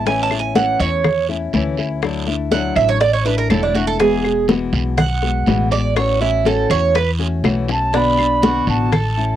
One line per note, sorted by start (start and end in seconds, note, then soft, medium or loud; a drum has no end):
0.00 0.73 A1 medium
0.05 0.29 E3 medium
0.05 0.30 A3 medium
0.05 0.30 C#4 medium
0.05 0.29 E4 medium
0.05 0.22 G#5 medium
0.05 high bongo medium
0.05 high conga soft
0.05 long guiro medium
0.23 0.38 A5 medium
0.30 0.55 A3 soft
0.30 0.55 C#4 soft
0.30 0.54 E4 medium
0.30 high bongo soft
0.30 high conga soft
0.30 claves medium
0.39 0.55 G#5 medium
0.55 1.03 E3 medium
0.55 1.04 A3 medium
0.55 1.04 C#4 medium
0.55 1.04 E4 medium
0.55 0.79 F#5 medium
0.55 high bongo medium
0.55 high conga medium
0.55 short guiro medium
0.79 1.50 E2 loud
0.79 1.26 C#5 loud
0.79 high conga soft
0.79 short guiro medium
1.04 muted nylon-string guitar stroke medium
1.04 high bongo medium
1.04 high conga soft
1.04 low conga medium
1.04 long guiro medium
1.04 claves medium
1.29 1.53 A3 soft
1.29 1.53 C#4 soft
1.29 1.53 E4 medium
1.29 high bongo soft
1.29 high conga soft
1.53 2.70 D2 medium
1.53 1.77 E3 medium
1.53 1.77 A3 medium
1.53 1.77 C#4 medium
1.53 1.76 E4 medium
1.53 high bongo soft
1.53 low bongo medium
1.53 high conga medium
1.53 short guiro medium
1.77 2.02 A3 soft
1.77 2.02 C#4 soft
1.77 2.01 E4 medium
1.77 high bongo soft
1.77 short guiro medium
2.02 2.26 D3 medium
2.02 2.27 F#3 medium
2.02 2.27 A3 medium
2.02 2.27 D4 medium
2.02 2.26 E4 medium
2.02 high bongo medium
2.02 high conga soft
2.02 long guiro medium
2.02 claves medium
2.27 2.52 A3 soft
2.27 2.51 D4 soft
2.27 2.51 E4 medium
2.27 high bongo soft
2.27 high conga soft
2.51 3.00 D3 medium
2.51 3.00 F#3 medium
2.51 3.00 A3 medium
2.51 3.00 D4 medium
2.51 3.00 E4 medium
2.51 2.76 F#5 loud
2.51 high bongo medium
2.51 high conga medium
2.51 short guiro medium
2.76 3.46 A1 loud
2.76 2.88 E5 medium
2.76 high conga soft
2.76 short guiro medium
2.76 claves medium
2.89 3.00 C#5 medium
3.00 3.13 D5 loud
3.00 muted nylon-string guitar stroke medium
3.00 high bongo medium
3.00 high conga soft
3.00 long guiro medium
3.13 3.25 C#5 medium
3.25 3.50 A3 soft
3.25 3.49 D4 soft
3.25 3.49 E4 soft
3.25 3.38 B4 medium
3.25 high bongo soft
3.25 high conga soft
3.38 3.50 A#4 medium
3.50 4.67 E1 medium
3.50 3.74 D3 medium
3.50 3.74 F#3 medium
3.50 3.74 A3 medium
3.50 3.74 D4 medium
3.50 3.73 E4 medium
3.50 3.62 A4 medium
3.50 high bongo soft
3.50 low bongo medium
3.50 high conga medium
3.50 short guiro medium
3.50 claves medium
3.63 3.75 D4 medium
3.75 3.99 A3 soft
3.75 3.99 D4 soft
3.75 3.98 E4 medium
3.75 3.87 F#4 medium
3.75 high bongo soft
3.75 high conga medium
3.75 short guiro medium
3.87 3.99 A4 loud
3.99 4.23 B2 medium
3.99 4.23 E3 medium
3.99 4.24 G#3 medium
3.99 4.24 B3 medium
3.99 4.23 F#4 medium
3.99 4.45 G#4 medium
3.99 high bongo medium
3.99 high conga soft
3.99 long guiro medium
4.24 4.49 G#3 soft
4.24 4.48 B3 medium
4.24 4.48 F#4 soft
4.24 high bongo soft
4.24 high conga soft
4.24 claves medium
4.48 4.97 B2 medium
4.48 4.97 E3 medium
4.48 4.97 G#3 medium
4.48 4.97 B3 medium
4.48 4.97 F#4 medium
4.48 high bongo medium
4.48 high conga loud
4.48 short guiro medium
4.73 5.43 B1 loud
4.73 high conga soft
4.73 short guiro medium
4.98 5.68 F#5 loud
4.98 muted nylon-string guitar stroke medium
4.98 high bongo medium
4.98 high conga soft
4.98 low conga medium
4.98 long guiro medium
4.98 claves medium
5.22 5.47 G#3 soft
5.22 5.47 B3 soft
5.22 5.46 F#4 medium
5.22 high bongo soft
5.22 high conga soft
5.46 6.64 A1 medium
5.46 5.71 B2 medium
5.46 5.71 E3 medium
5.46 5.71 G#3 medium
5.46 5.71 B3 medium
5.46 5.70 F#4 medium
5.46 high bongo soft
5.46 low bongo medium
5.46 high conga medium
5.46 short guiro medium
5.71 5.96 G#3 soft
5.71 5.96 B3 soft
5.71 5.96 F#4 soft
5.71 5.96 D5 medium
5.71 high bongo soft
5.71 short guiro medium
5.96 6.20 E3 medium
5.96 6.20 A3 medium
5.96 6.20 C#4 medium
5.96 6.19 F#4 medium
5.96 6.21 C#5 medium
5.96 high bongo medium
5.96 high conga soft
5.96 long guiro medium
5.96 claves medium
6.21 6.45 A3 soft
6.21 6.45 C#4 medium
6.21 6.45 E4 medium
6.21 6.45 F#4 medium
6.21 high bongo soft
6.21 high conga soft
6.45 6.94 E3 medium
6.45 6.94 A3 medium
6.45 6.94 C#4 medium
6.45 6.95 F#4 medium
6.45 6.70 A4 medium
6.45 high bongo medium
6.45 high conga medium
6.45 short guiro medium
6.70 7.40 E2 loud
6.70 6.95 C#5 loud
6.70 high conga soft
6.70 short guiro medium
6.70 claves medium
6.95 7.10 B4 medium
6.95 muted nylon-string guitar stroke medium
6.95 high bongo medium
6.95 high conga soft
6.95 long guiro medium
7.19 7.43 A3 soft
7.19 7.44 C#4 medium
7.19 7.43 F#4 medium
7.19 high bongo soft
7.19 high conga soft
7.44 8.61 B1 medium
7.44 7.68 E3 medium
7.44 7.68 A3 medium
7.44 7.68 C#4 medium
7.44 7.67 F#4 medium
7.44 high bongo loud
7.44 high conga medium
7.44 short guiro medium
7.44 claves medium
7.68 7.93 A3 soft
7.68 7.93 C#4 medium
7.68 7.92 F#4 medium
7.68 7.98 A5 medium
7.68 low bongo loud
7.68 short guiro medium
7.93 8.17 B2 medium
7.93 8.18 D3 medium
7.93 8.18 B3 medium
7.93 8.42 D4 medium
7.93 8.18 D4 medium
7.93 8.17 F#4 medium
7.93 8.69 B5 loud
7.93 high bongo medium
7.93 high conga soft
7.93 long guiro medium
8.18 8.42 B3 soft
8.18 8.42 D4 soft
8.18 8.42 F#4 medium
8.18 high conga soft
8.18 claves medium
8.42 8.91 B2 medium
8.42 8.91 D3 medium
8.42 8.92 B3 medium
8.42 8.92 D4 medium
8.42 8.91 F#4 medium
8.42 8.92 F#4 medium
8.42 high bongo medium
8.42 high conga loud
8.42 short guiro medium
8.67 9.36 A1 loud
8.67 9.36 A5 loud
8.67 high conga soft
8.67 short guiro medium
8.92 9.36 A4 medium
8.92 muted nylon-string guitar stroke medium
8.92 high bongo medium
8.92 high conga soft
8.92 low conga medium
8.92 long guiro medium
8.92 claves medium
9.17 9.36 A3 soft
9.17 9.36 C#4 soft
9.17 9.36 E4 soft
9.17 high conga soft